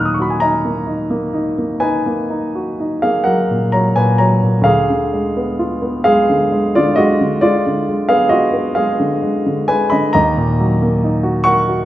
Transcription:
grand piano
Already playing: D#2 A#2 F#3 A#3 D#4 A#4 F#5 G#5 A#5 B5 C#6 D#6 F#6
0.00 F6
0.05 D#6
0.14 C#6
0.20 F#4 B5
0.30 G#5
0.40 D#4 D#5 A#5
0.65 A#3
0.87 D#4
1.10 A#3
1.33 D#4
1.58 A#3
1.80 D#4 B4 G#5
2.06 A#3
2.30 D#4
2.55 F#4
2.80 D#4
3.02 A#3 G#4 F5
3.24 F#3 A#4 F#5
3.51 A#2
3.72 F#3 C#5 A#5
3.96 A#2 B4 G#5
4.18 F#3 C#5 A#5
4.44 A#2
4.61 D2 F5
4.66 G#4
4.90 D3
5.13 G#3
5.37 B3
5.59 F4
5.82 B3
6.04 G#3 G#4 F5
6.30 D3
6.52 G#3
6.75 D3 F4 D5
6.96 G#3 F#4 D#5
7.21 D3
7.41 G#3 F4 D5
7.66 D3
7.89 G#3
8.09 B3 G#4 F5
8.29 F4 F#4 D#5
8.54 B3
8.75 G#3 G#4 F5
9.00 D3
9.22 G#3
9.46 D3
9.68 G#3 B4 G#5
9.90 D3 D#5 B5
10.13 D#2 D#5 A#5
10.37 A#2
10.60 F#3
10.82 A#3
11.03 D#4
11.23 F#4
11.44 A#4 F#5 C#6
11.69 F#4

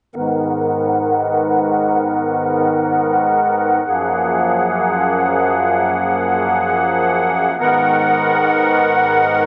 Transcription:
accordion
0.15 G#2 D#3 B3 A#4 F#5
3.88 F#2 F3 A#3 G#4
7.60 G#2 D#3 B3 A#4 F#5

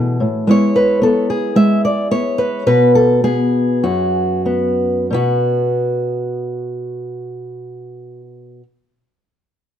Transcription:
steel-string acoustic guitar
Already playing: A2 B2 G#4
0.20 A2
0.47 G#3 B3 E4 C#5
0.76 B4
1.01 B3 A4
1.30 G#4
1.56 G#3 E5
1.85 D5
2.11 B3 C#5
2.38 B4
2.66 B2 B3 F#4 B4
2.95 A4
3.24 B3 G#4
3.83 F#2 F#4
4.46 B3
5.10 B2 B3 F#4

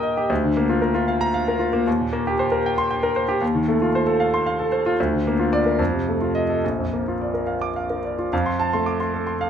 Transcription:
grand piano
Already playing: D#2 A#2 A#3 G4 A#4 D#5 G5 D#6
0.03 D#5
0.17 G4
0.30 D2
0.44 D3
0.57 A#3
0.70 F4
0.82 A#4
0.94 F4
1.08 F5
1.21 A#5
1.34 F5
1.48 A#4
1.59 F4
1.73 A#3
1.87 D#2
2.00 A#2
2.13 A#3
2.27 G4
2.39 C5
2.52 A#4
2.66 G5
2.78 C6
2.91 G5
3.03 A#4
3.16 C5
3.28 G4
3.41 D#2
3.55 D#3
3.68 A3
3.82 F4
3.95 C5
4.07 A4
4.20 F5
4.34 C6
4.46 F5
4.59 A4
4.72 C5
4.86 F4
5.00 D2
5.13 D3
5.27 A#3
5.39 F4
5.53 D5
5.66 A#4
5.79 F2
5.94 C3
6.08 A3
6.21 F4
6.35 D#5
6.49 A4
6.64 A#1
6.79 F2
6.93 A#3
7.08 F4
7.21 D5
7.34 A#4
7.47 F5
7.62 D6
7.76 F5
7.90 A#4
8.04 D5
8.19 F4
8.33 F2 F5
8.46 C6
8.60 A5
8.73 A3 C6
8.86 D6
9.00 C6
9.14 A4
9.27 C6
9.41 F5

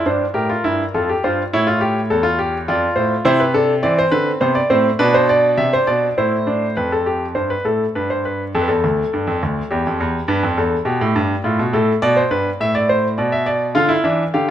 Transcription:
grand piano
0.06 G2 D4 C5
0.34 A2 G4 A#4
0.50 F4
0.64 G2 E4
0.94 F2 F4 A4
1.09 G4
1.24 G2 F4 C5
1.53 A2 E4 C#5
1.67 F4
1.81 G4
2.10 E2 A4
2.23 F4
2.39 G4
2.68 F2 F4 D5
2.96 A2 C5
3.25 C3 E4 C5
3.40 B4
3.54 D4 A4
3.83 E3 C4 D5
3.99 C5
4.12 D3 B4
4.41 C3 B3 C5
4.55 D5
4.70 A2 C4 C5
4.99 B2 D4 B4
5.14 C5
5.29 D5
5.57 C3 E5
5.73 C5
5.87 B2 D5
6.18 A2 E4 C5
6.47 D4
6.77 F2 B4
6.92 A4
7.06 G4
7.35 G2 C5
7.50 B4
7.65 A2 A4
7.95 G2 B4
8.10 C5
8.25 B4
8.55 F2 A4
8.62 B4
8.68 E2 A4
8.84 D2
9.13 G2
9.27 F2
9.43 D2
9.71 E2 G4
9.87 F2
10.00 E2
10.28 G2 B4
10.43 F2
10.58 E2 A4
10.85 B2 G4
11.01 A2
11.16 G2
11.44 A2 F4
11.59 B2
11.73 A2 A4
12.02 B2 D5
12.17 C5
12.31 G2 B4
12.61 A2 E5
12.75 D5
12.89 C5
13.18 B2 D5
13.32 E5
13.46 D5
13.75 D3 F4 F5
13.89 E4
14.04 E3 D4 E5
14.34 D3 G4 F5

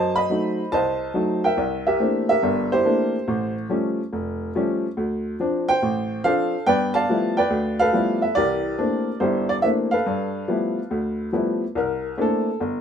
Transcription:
upright piano
Already playing: F#2 C5 D#5 A5
0.16 D#5 B5
0.30 F#3 A3 D#4
0.72 C2 C5 D#5 A5
1.14 F#3 A3 D#4
1.44 A#4 E5 G5
1.57 C2
1.87 G4 A#4 E5
2.00 E3 A3 A#3 C4 D4
2.29 G4 A#4 E5
2.43 G1 G2
2.72 E4 G4 C5
2.85 E3 A3 A#3 C4 D4
3.28 A1
3.69 F3 G3 A3 C#4
4.13 F1
4.55 F3 G3 A3 C#4
4.97 D2
5.40 F3 C4 D4
5.69 C5 G5
5.83 A1
6.24 F3 C4 D4 A4 C5 F5
6.67 G2 B3 B4 D5 G5
6.94 D5 F5 A5
7.09 F3 G3 A3 B3 E4
7.37 B4 D5 G5
7.50 D2
7.79 A4 B4 F5
7.93 F3 G3 A3 B3 E4
8.22 E5
8.35 C2 E3 G4 A#4 D5
8.78 E3 A3 A#3 C4 D4
9.20 G1 G2 E4 G4 C5
9.49 D5
9.62 E3 A3 A#3 C4 D4 E5
9.91 A4 B4 F5
10.06 G2
10.48 F3 G3 A3 B3 E4
10.91 D2
11.32 F3 G3 A3 B3 E4
11.75 C2 A#4
12.17 A3 A#3 C4 D4 E4
12.21 A4
12.60 G1

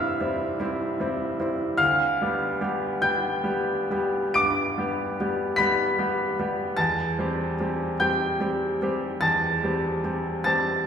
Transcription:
grand piano
Already playing: G2 G3 C4 E4 C5 E5 F5 C6 E6 F6
0.20 G3 C4 E4
0.60 G3 C4 E4
1.00 G3 C4 E4
1.40 G3 C4 E4
1.77 D2 F5 F6
2.22 G3 B3 G4
2.61 G3 B3 G4
3.02 G3 B3 G4 G5 G6
3.44 G3 B3 G4
3.91 G3 B3 G4
4.34 G2 D6 D7
4.78 G3 B3 G4
5.20 G3 B3 G4
5.56 G3 B3 G4 B5 B6
5.99 G3 B3 G4
6.39 G3 B3 G4
6.77 E2 A5 A6
7.19 G3 C4 G4
7.60 G3 C4 G4
8.00 G3 C4 G4 G5 G6
8.40 G3 C4 G4
8.82 G3 C4 G4
9.21 E2 A5 A6
9.64 G3 C4 G4
10.04 G3 C4 G4
10.44 G3 C4 G4 A5 A6

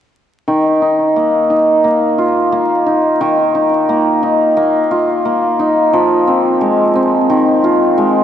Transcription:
hammered dulcimer
0.48 D#3
0.82 D#4
1.16 A#3
1.50 D#4
1.84 A#3
2.18 F4
2.52 A#3
2.86 D#4
3.21 D#3
3.55 D#4
3.89 A#3
4.23 D#4
4.57 A#3
4.91 F4
5.25 A#3
5.59 D#4
5.93 F3
6.27 C4
6.61 G#3
6.96 C4
7.30 D#3
7.64 F4
7.97 G#3

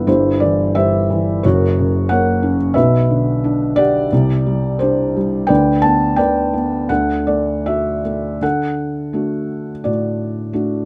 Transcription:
felt piano
0.07 G1 G2 E4 G4 C5
0.40 E3 D5
0.75 G2 G4 C5 E5
1.10 E3
1.43 F#1 F#2 F#4 A#4 C#5
1.79 C#3
2.09 A#3 A#4 C#5 F#5
2.43 C#4
2.74 B1 B2 B4 E5
3.10 D3
3.44 D4
3.76 G4 D5 F#5
4.12 C2 C3
4.46 G3
4.79 D4 G4 C5
5.16 G3
5.47 D2 D3 B4 D5 G5
5.82 B3 A5
6.16 D3 B4 D5 G5
6.54 B3
6.89 D2 D3 A4 F#5
7.27 A3 D5
7.66 F#4 E5
8.04 A3
8.41 D3 A4 F#5
9.13 A3 D4 F#4
9.84 A2 F#4 D5
10.53 A3 D4 F#4

